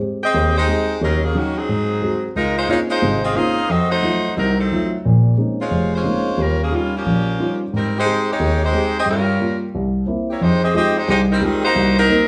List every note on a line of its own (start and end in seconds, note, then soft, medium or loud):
0.00 0.22 G#3 soft
0.00 0.23 C4 soft
0.00 0.23 G4 soft
0.23 0.54 C4 medium
0.23 0.54 G4 medium
0.23 0.54 G#4 medium
0.23 0.54 D#5 medium
0.34 0.63 D#2 medium
0.57 0.99 G#3 medium
0.57 0.98 D#4 medium
0.57 0.99 G4 medium
0.57 0.98 C5 medium
0.68 0.90 G#3 soft
0.68 0.90 C4 soft
0.68 0.90 G4 soft
1.01 1.30 D#2 medium
1.01 1.22 F#3 medium
1.01 1.22 C#4 medium
1.01 1.22 D#4 medium
1.01 1.22 A#4 medium
1.24 1.35 F3 medium
1.24 1.35 A#3 medium
1.24 1.35 C#4 medium
1.24 1.35 G#4 medium
1.35 1.57 D#3 medium
1.35 1.57 F#3 soft
1.35 1.57 A#3 medium
1.35 1.57 C#4 soft
1.35 1.57 C#4 medium
1.35 1.58 D#4 soft
1.35 1.57 F#4 medium
1.57 2.24 F#3 medium
1.57 2.24 C4 medium
1.57 2.24 D#4 medium
1.57 2.24 G#4 medium
1.69 1.97 G#2 medium
2.02 2.24 G#3 soft
2.02 2.25 C4 soft
2.02 2.25 F#4 soft
2.36 2.64 C#2 medium
2.36 2.56 G#3 medium
2.36 2.56 D#4 medium
2.36 2.56 F4 medium
2.36 2.56 A#4 medium
2.57 2.68 G#3 medium
2.57 2.68 D#4 medium
2.57 2.68 F4 medium
2.57 2.68 C5 medium
2.69 2.79 G#3 medium
2.69 2.91 A#3 soft
2.69 2.91 C4 soft
2.69 2.91 C#4 soft
2.69 2.91 D#4 soft
2.69 2.79 D#4 medium
2.69 2.79 F4 medium
2.69 2.92 F4 soft
2.69 2.79 C#5 medium
2.90 3.21 G#3 medium
2.90 3.22 D#4 medium
2.90 3.21 F4 medium
2.90 3.21 C5 medium
3.02 3.31 G#1 medium
3.02 3.31 C3 medium
3.24 3.35 C4 medium
3.24 3.35 F4 medium
3.24 3.35 G#4 medium
3.24 3.35 D#5 medium
3.35 3.58 A#3 soft
3.35 3.58 C4 soft
3.35 3.58 C#4 soft
3.35 3.58 D#4 soft
3.35 3.69 D#4 medium
3.35 3.58 F4 soft
3.35 3.69 G#4 medium
3.35 3.70 C5 medium
3.35 3.70 F5 medium
3.69 3.98 F2 medium
3.69 3.91 C4 medium
3.69 3.89 F#4 medium
3.69 3.91 A4 medium
3.69 3.91 D#5 medium
3.90 4.33 A3 medium
3.90 4.33 D#4 medium
3.90 4.33 F#4 medium
3.90 4.33 C5 medium
4.02 4.25 F#3 soft
4.02 4.26 A3 soft
4.02 4.25 D#4 soft
4.02 4.26 F4 soft
4.36 4.66 C2 medium
4.36 4.57 F#3 medium
4.36 4.57 C4 medium
4.36 4.56 D#4 medium
4.36 4.57 A#4 medium
4.59 4.90 F#3 medium
4.59 4.90 C4 medium
4.59 4.90 D#4 medium
4.59 4.90 A4 medium
4.72 4.94 F#3 soft
4.72 4.94 A3 soft
4.72 4.94 D#4 soft
4.72 4.94 F4 soft
5.05 5.34 A#1 medium
5.05 5.33 A#2 medium
5.38 5.60 G#3 soft
5.38 5.60 A#3 soft
5.38 5.60 C4 soft
5.38 5.60 C#4 soft
5.38 5.61 D#4 soft
5.61 5.91 G#3 medium
5.61 5.91 F4 medium
5.61 5.91 C5 medium
5.61 5.91 C#5 medium
5.71 6.00 F1 medium
5.95 6.40 G#3 medium
5.95 6.40 C#4 medium
5.95 6.39 F4 medium
5.95 6.39 C5 medium
6.04 6.27 G#3 soft
6.04 6.27 A#3 soft
6.04 6.27 C4 soft
6.04 6.27 C#4 soft
6.04 6.27 D#4 soft
6.38 6.67 D#2 medium
6.38 6.61 G3 medium
6.38 6.61 C#4 medium
6.38 6.61 F4 medium
6.38 6.61 A#4 medium
6.63 6.73 F3 medium
6.63 6.73 A#3 medium
6.63 6.72 C#4 medium
6.63 6.73 G#4 medium
6.71 6.94 G3 soft
6.71 6.95 G3 medium
6.71 6.95 A#3 medium
6.71 6.94 C#4 soft
6.71 6.95 C#4 medium
6.71 6.94 D#4 soft
6.71 6.95 F4 soft
6.71 6.95 F4 medium
6.96 7.58 F3 medium
6.96 7.58 A#3 medium
6.96 7.58 C#4 medium
6.96 7.58 G4 medium
7.06 7.35 A#1 medium
7.39 7.62 G3 soft
7.39 7.62 C#4 soft
7.39 7.62 D#4 soft
7.39 7.62 F4 medium
7.73 8.02 G#2 medium
7.73 7.94 G3 medium
7.73 7.94 C4 medium
7.73 7.94 D#4 medium
7.73 7.94 A#4 medium
7.98 8.28 G#3 medium
7.98 8.28 D#4 medium
7.98 8.28 G4 medium
7.98 8.28 C5 medium
8.06 8.29 G#3 soft
8.06 8.29 C4 soft
8.06 8.29 G4 soft
8.31 8.63 G#3 medium
8.31 8.63 D#4 medium
8.31 8.63 G4 medium
8.31 8.63 C#5 medium
8.39 8.68 D#2 medium
8.64 8.94 G#3 medium
8.64 8.94 D#4 medium
8.64 8.94 G4 medium
8.64 8.94 C5 medium
8.73 8.96 G#3 soft
8.73 8.96 C4 soft
8.73 8.96 G4 soft
8.98 9.08 C4 medium
8.98 9.08 G4 medium
8.98 9.08 G#4 medium
8.98 9.08 D#5 medium
9.06 9.35 G2 medium
9.06 9.59 G3 medium
9.06 9.59 C#4 medium
9.06 9.59 F4 medium
9.10 9.59 A#4 medium
9.40 9.63 G3 soft
9.40 9.63 A#3 soft
9.40 9.63 F4 soft
9.75 10.03 C2 medium
10.06 10.29 A#3 soft
10.06 10.30 C4 soft
10.06 10.30 E4 soft
10.30 10.41 A#3 medium
10.30 10.41 E4 medium
10.30 10.41 G4 medium
10.30 10.41 C#5 medium
10.41 10.70 F2 medium
10.41 10.63 G#3 medium
10.41 10.63 D#4 medium
10.41 10.63 G4 medium
10.41 10.63 C5 medium
10.63 10.74 C4 medium
10.63 10.74 G4 medium
10.63 10.74 G#4 medium
10.63 10.74 D#5 medium
10.74 10.97 G#3 soft
10.74 10.95 C4 medium
10.74 10.97 D#4 soft
10.74 10.97 F4 soft
10.74 10.97 G4 soft
10.74 10.95 G4 medium
10.74 10.95 G#4 medium
10.74 10.95 D#5 medium
10.97 11.09 G#3 medium
10.97 11.09 D#4 medium
10.97 11.09 G4 medium
10.97 11.09 C5 medium
11.08 11.37 C2 medium
11.08 11.19 G#3 medium
11.08 11.19 D#4 medium
11.08 11.20 G4 medium
11.08 11.19 C5 medium
11.31 11.42 G3 medium
11.31 11.42 C4 medium
11.31 11.42 D#4 medium
11.31 11.42 A#4 medium
11.41 11.64 D#3 medium
11.41 11.64 G3 medium
11.41 11.64 G#3 soft
11.41 11.64 C4 medium
11.41 11.64 D#4 soft
11.41 11.64 F4 soft
11.41 11.64 G4 medium
11.41 11.64 G#4 medium
11.64 11.95 A#3 medium
11.64 11.95 D#4 medium
11.64 11.95 F#4 medium
11.64 11.95 C5 medium
11.75 12.04 C2 medium
11.98 12.28 F#3 medium
11.98 12.28 C4 medium
11.98 12.28 D#4 medium
11.98 12.28 A#4 medium
12.09 12.28 A#3 soft
12.09 12.28 C4 soft
12.09 12.28 D#4 medium